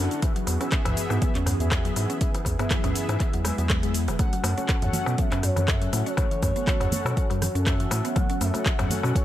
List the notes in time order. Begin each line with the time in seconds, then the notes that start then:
Already playing: D3 A3 D4 E4 F#4 A4 F#5
0.11 closed hi-hat, cabasa
0.22 E3 B3 G#4 E5, kick, closed hi-hat, darbuka tek, cabasa
0.36 F#3, closed hi-hat, cabasa
0.47 E2, open hi-hat, darbuka ka, cabasa
0.61 B3 C#4 G#4 E5, closed hi-hat, darbuka tek, cabasa
0.72 kick, cross-stick, clap, closed hi-hat, cabasa
0.85 C#2 E3 B3 G#4 E5, closed hi-hat, mid tom, darbuka tek, cabasa
0.97 open hi-hat, cabasa
1.10 G#2 B3, darbuka ka, darbuka tek, cabasa
1.22 F#3 B3 G#4 E5, kick, closed hi-hat, cabasa
1.35 E2 C#4, clap, closed hi-hat, cabasa
1.46 cross-stick, mid tom, open hi-hat, darbuka tek, cabasa
1.60 E2 B3 G#4 E5, closed hi-hat, cabasa
1.71 kick, cross-stick, clap, closed hi-hat, darbuka tek, cabasa
1.85 F#3, closed hi-hat, cabasa
1.96 G#2 B3 G#4 E5, open hi-hat, darbuka tek, cabasa
2.10 C#4, closed hi-hat, cabasa
2.21 B3 E4 G#4 E5, kick, closed hi-hat, cabasa
2.34 E3, closed hi-hat, darbuka tek, cabasa
2.45 E2, kick, open hi-hat, darbuka ka, cabasa
2.59 B3 G#4 E5, closed hi-hat, mid tom, darbuka tek, cabasa
2.71 F#3, kick, cross-stick, clap, closed hi-hat, cabasa
2.84 C#2 B3 C#4 G#4 E5, closed hi-hat, mid tom, darbuka tek, cabasa
2.95 open hi-hat, cabasa
3.09 G#2, closed hi-hat, darbuka ka, cabasa
3.20 B3 G#4 E5, kick, clap, closed hi-hat, darbuka tek, cabasa
3.33 E2 F#3, closed hi-hat, cabasa
3.45 G#3 B3 G#4 E5, cross-stick, open hi-hat, darbuka tek, cabasa
3.58 E2 F#3 B3 G#4 E5, closed hi-hat, cabasa
3.70 G#3, kick, cross-stick, clap, closed hi-hat, darbuka tek, cabasa
3.83 G#3 B3 G#4 E5, closed hi-hat, cabasa
3.94 open hi-hat, cabasa
4.08 E1 F#3, closed hi-hat, darbuka tek, cabasa
4.19 F#3 C#4 F#4 A4 F#5, kick, closed hi-hat, darbuka tek, high conga, cabasa
4.33 F#3, closed hi-hat, cabasa
4.44 F#2 F#5, open hi-hat, darbuka ka, darbuka tek, high conga, cabasa
4.57 C#4 A4 F#5, closed hi-hat, high conga, cabasa
4.69 kick, cross-stick, clap, closed hi-hat, darbuka tek, cabasa
4.82 E2 E3 C#4 A4 F#5, closed hi-hat, mid tom, cabasa
4.93 open hi-hat, high conga, low conga, cabasa
5.06 B2 B3, darbuka ka, darbuka tek, cabasa
5.18 F#3 C#4 A4 E5 F#5, kick, closed hi-hat, cabasa
5.32 F#2 C#4, clap, closed hi-hat, darbuka tek, cabasa
5.43 C#5, cross-stick, mid tom, open hi-hat, cabasa
5.56 F#2 C#4 A4 F#5, closed hi-hat, darbuka tek, low conga, cabasa
5.68 E5, kick, cross-stick, clap, closed hi-hat, cabasa
5.82 F#3, closed hi-hat, cabasa
5.93 A2 C#4 A4 F#5, open hi-hat, darbuka tek, high conga, cabasa
6.06 C#4 C#5, closed hi-hat, cabasa
6.17 C#4 A4 F#5, kick, closed hi-hat, darbuka tek, high conga, cabasa
6.31 E3, closed hi-hat, cabasa
6.43 F#2, kick, open hi-hat, high conga, darbuka tek, cabasa
6.56 B3 C#4 A4 F#5, closed hi-hat, high conga, cabasa
6.67 F#3, kick, cross-stick, clap, closed hi-hat, cabasa
6.81 E2 C#4 A4 F#5, closed hi-hat, mid tom, darbuka tek, cabasa
6.92 open hi-hat, high conga, low conga, cabasa
7.05 B2, darbuka ka, darbuka tek, cabasa
7.17 C#4 A4 F#5, kick, closed hi-hat, cabasa
7.30 F#2 F#3, closed hi-hat, darbuka tek, cabasa
7.42 cross-stick, open hi-hat, low conga, cabasa
7.55 F#2 C#4 A4 F#5, closed hi-hat, cabasa
7.67 E5, kick, cross-stick, clap, closed hi-hat, darbuka tek, cabasa
7.80 E3, closed hi-hat, cabasa
7.91 A2 C#4 A4 F#5, open hi-hat, darbuka tek, high conga, cabasa
8.05 B3, closed hi-hat, cabasa
8.16 F#3 C#4 A4 F#5, kick, closed hi-hat, darbuka tek, high conga, cabasa
8.30 C#4, closed hi-hat, cabasa
8.41 F#2 E5, open hi-hat, darbuka ka, high conga, cabasa
8.54 C#4 A4 F#5, closed hi-hat, darbuka tek, high conga, cabasa
8.66 kick, cross-stick, clap, closed hi-hat, cabasa
8.79 E2 F#3 C#4 A4 F#5, closed hi-hat, mid tom, darbuka tek, cabasa
8.90 open hi-hat, high conga, low conga, cabasa
9.03 B2 C#4, darbuka ka, darbuka tek, cabasa
9.15 C#4 A4 C#5 F#5, kick, closed hi-hat, cabasa